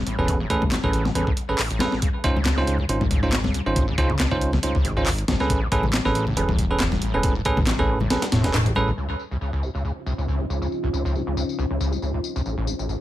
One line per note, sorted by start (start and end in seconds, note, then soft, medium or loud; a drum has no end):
0.07 0.16 A1 medium
0.07 closed hi-hat medium
0.18 0.46 E1 medium
0.18 0.30 A1 medium
0.18 0.37 C#4 medium
0.18 0.37 G#4 medium
0.18 0.37 A4 medium
0.18 0.37 B4 medium
0.28 0.35 G#1 medium
0.28 kick loud
0.28 closed hi-hat medium
0.40 0.48 A1 medium
0.50 0.79 A1 medium
0.50 0.57 A1 medium
0.50 0.63 C#4 loud
0.50 0.63 G#4 medium
0.50 0.63 A4 medium
0.50 0.63 B4 loud
0.50 kick medium
0.50 closed hi-hat medium
0.62 kick medium
0.62 high conga medium
0.62 low conga medium
0.72 0.78 G#1 loud
0.72 snare loud
0.72 clap loud
0.72 closed hi-hat medium
0.83 0.92 A1 medium
0.83 1.11 A1 medium
0.83 1.02 C#4 medium
0.83 1.02 G#4 medium
0.83 1.02 A4 medium
0.83 1.02 B4 loud
0.83 kick loud
0.93 1.07 A1 loud
0.93 closed hi-hat medium
1.05 1.11 G#1 medium
1.05 snare soft
1.05 high conga medium
1.05 low conga medium
1.15 1.25 A1 medium
1.15 1.24 E2 medium
1.15 1.28 C#4 medium
1.15 1.28 G#4 medium
1.15 1.28 A4 medium
1.15 1.28 B4 medium
1.15 closed hi-hat medium
1.27 1.33 A1 medium
1.27 kick medium
1.37 closed hi-hat medium
1.49 1.54 G#1 loud
1.49 1.60 C#4 medium
1.49 1.60 G#4 medium
1.49 1.60 A4 medium
1.49 1.60 B4 medium
1.59 1.69 A1 medium
1.59 clap loud
1.59 open hi-hat medium
1.70 1.82 A1 loud
1.70 closed hi-hat soft
1.79 1.87 G#1 medium
1.79 1.93 C#4 medium
1.79 1.93 G#4 medium
1.79 1.93 A4 medium
1.79 1.93 B4 loud
1.79 snare loud
1.79 closed hi-hat medium
1.79 high conga loud
1.92 2.01 A1 medium
1.92 snare soft
2.02 2.09 C#2 medium
2.02 kick loud
2.02 closed hi-hat medium
2.24 2.31 C2 loud
2.24 2.53 C#2 loud
2.24 2.37 C#4 medium
2.24 2.37 D#4 medium
2.24 2.37 F4 medium
2.24 2.37 C5 loud
2.24 kick medium
2.24 closed hi-hat medium
2.36 2.44 C#2 medium
2.36 high conga medium
2.36 low conga medium
2.46 2.59 C#2 loud
2.46 snare loud
2.46 clap loud
2.46 closed hi-hat medium
2.57 2.63 C2 medium
2.57 2.85 C#2 medium
2.57 2.76 C#4 medium
2.57 2.76 D#4 medium
2.57 2.76 F4 medium
2.57 2.76 C5 loud
2.57 snare soft
2.67 2.77 C#2 medium
2.67 closed hi-hat medium
2.79 2.85 C#2 medium
2.79 low conga medium
2.89 3.50 G#1 medium
2.89 3.02 C#4 medium
2.89 3.02 D#4 medium
2.89 3.02 F4 medium
2.89 3.02 C5 medium
2.89 closed hi-hat medium
3.01 3.07 C2 loud
3.01 kick medium
3.01 high conga medium
3.11 3.21 C#2 medium
3.11 kick medium
3.11 closed hi-hat medium
3.23 3.34 C#2 loud
3.23 3.34 C#4 medium
3.23 3.34 D#4 medium
3.23 3.34 F4 medium
3.23 3.34 C5 medium
3.32 3.39 C2 medium
3.32 snare loud
3.32 clap loud
3.32 closed hi-hat medium
3.44 3.53 C#2 medium
3.44 snare medium
3.44 high conga medium
3.54 3.61 C#2 medium
3.54 closed hi-hat medium
3.66 3.94 G#1 medium
3.66 3.85 C#4 medium
3.66 3.85 D#4 medium
3.66 3.85 F4 medium
3.66 3.85 C5 medium
3.76 3.83 C2 loud
3.76 kick loud
3.76 closed hi-hat medium
3.88 3.96 C#2 medium
3.98 4.11 C#2 loud
3.98 4.27 C#2 loud
3.98 4.11 C#4 medium
3.98 4.11 D#4 medium
3.98 4.11 F4 medium
3.98 4.11 C5 loud
3.98 kick medium
3.98 closed hi-hat medium
4.09 4.15 C2 medium
4.09 kick loud
4.09 low conga medium
4.19 4.29 C#2 medium
4.19 snare loud
4.19 clap loud
4.19 closed hi-hat medium
4.31 4.37 C#2 medium
4.31 4.59 C#2 medium
4.31 4.50 C#4 medium
4.31 4.50 D#4 medium
4.31 4.50 F4 medium
4.31 4.50 C5 loud
4.31 kick medium
4.41 closed hi-hat medium
4.53 4.59 C2 medium
4.53 snare soft
4.53 high conga medium
4.53 low conga medium
4.63 4.73 C#2 medium
4.63 4.76 C#4 medium
4.63 4.76 D#4 medium
4.63 4.76 F4 medium
4.63 4.76 C5 medium
4.63 closed hi-hat medium
4.75 4.86 C#2 loud
4.75 kick medium
4.85 5.24 G#1 medium
4.85 4.91 C2 medium
4.85 closed hi-hat medium
4.97 5.05 C#2 medium
4.97 5.08 C#4 medium
4.97 5.08 D#4 medium
4.97 5.08 F4 medium
4.97 5.08 C5 medium
5.06 5.13 C#2 medium
5.06 clap medium
5.06 open hi-hat medium
5.18 closed hi-hat soft
5.28 5.37 G#1 medium
5.28 5.35 C2 loud
5.28 snare loud
5.28 closed hi-hat medium
5.28 high conga medium
5.40 5.48 C#2 medium
5.40 5.59 C#4 medium
5.40 5.59 G#4 medium
5.40 5.59 A4 medium
5.40 5.59 B4 medium
5.40 snare soft
5.50 5.63 A1 loud
5.50 kick loud
5.50 closed hi-hat medium
5.62 5.67 G#1 medium
5.72 6.00 A1 medium
5.72 5.82 A1 medium
5.72 5.85 C#4 medium
5.72 5.85 G#4 medium
5.72 5.85 A4 medium
5.72 5.85 B4 loud
5.72 kick medium
5.72 closed hi-hat medium
5.83 5.89 A1 medium
5.83 high conga medium
5.83 low conga medium
5.93 snare loud
5.93 clap loud
5.93 closed hi-hat medium
6.05 6.11 G#1 loud
6.05 6.33 A1 medium
6.05 6.24 C#4 medium
6.05 6.24 G#4 medium
6.05 6.24 A4 medium
6.05 6.24 B4 loud
6.05 snare soft
6.15 6.25 A1 medium
6.15 closed hi-hat medium
6.27 6.38 A1 loud
6.27 low conga medium
6.37 6.98 E1 medium
6.37 6.43 G#1 medium
6.37 6.50 C#4 medium
6.37 6.50 G#4 medium
6.37 6.50 A4 medium
6.37 6.50 B4 medium
6.37 closed hi-hat medium
6.49 6.57 A1 medium
6.49 kick medium
6.49 high conga medium
6.58 6.65 A1 medium
6.58 kick medium
6.58 closed hi-hat medium
6.71 6.81 C#4 medium
6.71 6.81 G#4 medium
6.71 6.82 A4 medium
6.71 6.81 B4 medium
6.80 6.87 G#1 loud
6.80 snare loud
6.80 clap medium
6.80 closed hi-hat medium
6.92 7.00 A1 medium
6.92 snare medium
6.92 high conga medium
7.02 7.15 A1 loud
7.02 closed hi-hat medium
7.14 7.41 E1 medium
7.14 7.19 G#1 medium
7.14 7.33 C#4 medium
7.14 7.33 G#4 medium
7.14 7.33 A4 medium
7.14 7.33 B4 medium
7.23 7.34 A1 medium
7.23 kick loud
7.23 closed hi-hat medium
7.35 7.41 A1 medium
7.45 7.74 A1 loud
7.45 7.58 C#4 loud
7.45 7.58 G#4 medium
7.45 7.58 A4 medium
7.45 7.58 B4 loud
7.45 kick medium
7.45 closed hi-hat medium
7.57 7.63 G#1 loud
7.57 kick medium
7.57 high conga medium
7.57 low conga medium
7.67 7.77 A1 medium
7.67 snare loud
7.67 clap loud
7.67 closed hi-hat medium
7.79 7.90 A1 loud
7.79 8.07 A1 medium
7.79 7.98 C#4 medium
7.79 7.98 G#4 medium
7.79 7.98 A4 medium
7.79 7.98 B4 medium
7.79 kick loud
7.89 7.96 G#1 medium
8.00 8.09 A1 medium
8.00 high conga medium
8.00 low conga medium
8.10 8.17 A1 medium
8.10 8.24 C#4 medium
8.10 8.24 G#4 medium
8.10 8.24 A4 medium
8.10 8.24 B4 medium
8.10 snare loud
8.10 closed hi-hat medium
8.22 snare loud
8.22 closed hi-hat medium
8.32 8.66 E1 medium
8.32 8.46 A2 loud
8.32 snare loud
8.32 closed hi-hat medium
8.44 8.52 A1 loud
8.44 8.55 C#4 medium
8.44 8.55 G#4 medium
8.44 8.55 A4 medium
8.44 8.55 B4 medium
8.44 snare loud
8.44 closed hi-hat medium
8.54 8.67 A2 loud
8.54 snare loud
8.54 clap medium
8.54 closed hi-hat medium
8.66 8.72 A1 medium
8.66 8.74 A1 medium
8.66 closed hi-hat soft
8.75 8.83 A1 medium
8.75 8.93 A1 medium
8.75 8.89 C#4 loud
8.75 8.89 G#4 medium
8.75 8.89 A4 medium
8.75 8.89 B4 loud
8.75 high conga medium
8.88 8.91 A1 loud
8.97 9.08 C#2 medium
8.97 12.42 C#4 medium
8.97 12.42 F4 medium
8.97 12.42 C5 medium
8.97 12.42 D#5 medium
8.97 tambourine soft
9.10 9.15 C#2 medium
9.19 tambourine medium
9.31 9.37 C2 medium
9.31 tambourine soft
9.41 9.51 C#2 medium
9.41 tambourine soft
9.53 9.64 C#2 loud
9.63 9.69 C2 medium
9.63 tambourine medium
9.75 9.83 C#2 medium
9.75 tambourine soft
9.85 9.91 C#2 medium
9.85 tambourine soft
10.06 10.13 C2 medium
10.06 tambourine medium
10.18 10.26 C#2 medium
10.18 tambourine soft
10.28 10.41 C#2 medium
10.28 tambourine soft
10.40 10.46 C2 medium
10.50 10.60 C#2 medium
10.50 tambourine medium
10.62 10.67 C#2 medium
10.62 tambourine soft
10.72 tambourine soft
10.83 10.89 C2 medium
10.93 11.03 C#2 medium
10.93 tambourine medium
11.05 11.17 C#2 loud
11.05 tambourine soft
11.15 11.22 C2 medium
11.15 tambourine soft
11.27 11.35 C#2 medium
11.37 11.43 C#2 medium
11.37 tambourine medium
11.49 tambourine soft
11.59 11.65 C2 medium
11.59 tambourine soft
11.70 11.79 C#2 medium
11.80 11.94 C#2 medium
11.80 tambourine medium
11.92 11.98 C2 medium
11.92 tambourine soft
12.02 12.12 C#2 medium
12.02 tambourine soft
12.14 12.20 C#2 medium
12.24 tambourine medium
12.36 12.41 C2 medium
12.36 tambourine soft
12.46 12.56 A1 medium
12.46 13.01 A3 medium
12.46 13.01 G#4 medium
12.46 13.01 B4 medium
12.46 13.01 C#5 medium
12.46 tambourine soft
12.58 12.69 A1 loud
12.67 12.74 G#1 medium
12.67 tambourine medium
12.79 12.87 A1 medium
12.79 tambourine soft
12.89 12.96 A1 medium
12.89 tambourine soft